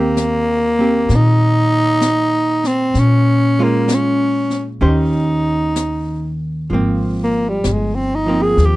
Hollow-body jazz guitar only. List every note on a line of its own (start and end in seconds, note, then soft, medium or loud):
0.00 2.95 D#3 soft
0.00 0.78 A#3 soft
0.00 0.79 C4 soft
0.00 0.80 G4 medium
0.79 2.95 A#3 soft
0.79 2.95 C4 soft
0.79 2.96 G4 soft
3.59 4.82 G#3 soft
3.59 4.80 C#4 soft
3.59 4.81 F4 soft
4.81 6.70 D#3 soft
4.81 6.70 C#4 soft
4.81 6.70 G4 soft
4.81 6.70 C5 medium
6.70 8.25 F3 soft
6.70 8.27 A#3 soft
6.74 8.28 C4 soft
8.26 8.76 F3 soft
8.26 8.76 A#3 soft
8.26 8.76 C4 soft